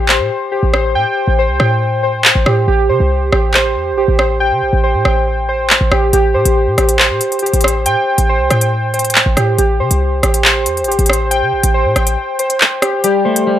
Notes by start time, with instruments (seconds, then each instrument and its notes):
Already playing: 808-style bass A1, synth keys G4
0.09 synth keys C5, clap
0.20 808-style bass A2
0.52 synth keys G4
0.63 808-style bass A1
0.73 synth keys C5, cross-stick
0.95 808-style bass A2, synth keys G5
1.28 808-style bass A1
1.39 synth keys C5
1.49 808-style bass C2
1.60 808-style bass A2, synth keys G5, cross-stick
2.03 synth keys C5
2.25 clap
2.35 808-style bass A1
2.46 808-style bass A2, synth keys G4, cross-stick
2.68 808-style bass A1, synth keys G4
2.89 808-style bass C3, synth keys C5
3.00 808-style bass C2
3.32 808-style bass A1, synth keys G4, cross-stick
3.54 synth keys C5, clap
3.76 808-style bass E2
3.92 808-style bass A1
3.97 synth keys G4
4.08 808-style bass A1
4.19 synth keys C5, cross-stick
4.40 synth keys G5
4.51 808-style bass C3
4.62 808-style bass A1
4.73 808-style bass A1
4.84 synth keys C5
4.95 808-style bass A2
5.05 808-style bass A1, synth keys G5, cross-stick
5.49 synth keys C5
5.70 clap
5.81 808-style bass A1
5.91 808-style bass A1, synth keys G4, cross-stick
6.13 808-style bass A1, synth keys G4, closed hi-hat
6.34 808-style bass A2, synth keys C5
6.45 808-style bass A1, closed hi-hat
6.67 808-style bass A2
6.78 808-style bass A1, synth keys G4, cross-stick, closed hi-hat
6.89 closed hi-hat
6.99 synth keys C5, clap
7.10 808-style bass A2
7.21 closed hi-hat
7.32 closed hi-hat
7.39 synth keys G4, closed hi-hat
7.46 closed hi-hat
7.53 808-style bass A1, closed hi-hat
7.61 synth keys C5, cross-stick, closed hi-hat
7.68 closed hi-hat
7.86 808-style bass A2, synth keys G5, closed hi-hat
8.18 808-style bass A1, closed hi-hat
8.29 synth keys C5
8.40 808-style bass C2
8.50 808-style bass A2, synth keys G5, cross-stick, closed hi-hat
8.61 closed hi-hat
8.94 synth keys C5, closed hi-hat
8.99 closed hi-hat
9.05 closed hi-hat
9.10 closed hi-hat
9.15 clap
9.26 808-style bass A1
9.37 808-style bass A2, synth keys G4, cross-stick, closed hi-hat
9.59 808-style bass A1, synth keys G4, closed hi-hat
9.80 808-style bass C3, synth keys C5
9.91 808-style bass C2, closed hi-hat
10.23 808-style bass A1, synth keys G4, cross-stick, closed hi-hat
10.34 closed hi-hat
10.45 synth keys C5, clap
10.66 808-style bass E2, closed hi-hat
10.77 closed hi-hat
10.83 808-style bass A1, closed hi-hat
10.88 synth keys G4, closed hi-hat
10.99 808-style bass A1, closed hi-hat
11.06 synth keys C5, cross-stick, closed hi-hat
11.13 closed hi-hat
11.31 synth keys G5, closed hi-hat
11.42 808-style bass C3
11.53 808-style bass A1
11.63 808-style bass A1, closed hi-hat
11.74 synth keys C5
11.85 808-style bass A2
11.96 808-style bass A1, synth keys G5, cross-stick, closed hi-hat
12.07 closed hi-hat
12.39 synth keys C5, closed hi-hat
12.50 closed hi-hat
12.61 clap
12.82 synth keys G4, cross-stick, closed hi-hat
13.04 clean electric guitar G3, synth keys G4, closed hi-hat
13.25 clean electric guitar A3, synth keys C5
13.36 closed hi-hat
13.47 clean electric guitar G3